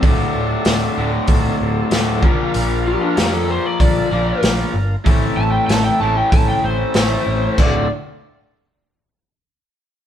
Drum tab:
CC |--------|--------|--------|x-------|
HH |o-o-o-o-|o-o-o-o-|o-o-o-o-|--------|
SD |--o---o-|--o---o-|--o---o-|--------|
BD |o---o--o|----o---|o---o---|o-------|